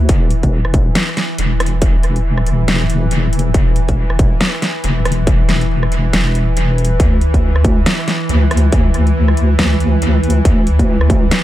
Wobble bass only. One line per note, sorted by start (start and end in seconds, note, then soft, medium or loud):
0.09 0.94 E1 loud
1.39 2.67 E1 loud
2.68 3.53 E1 loud
3.54 4.39 E1 medium
4.84 6.12 E1 loud
6.13 6.98 E1 loud
7.00 7.85 D2 medium
8.29 9.57 D2 loud
9.59 10.44 D2 loud
10.45 11.30 D2 loud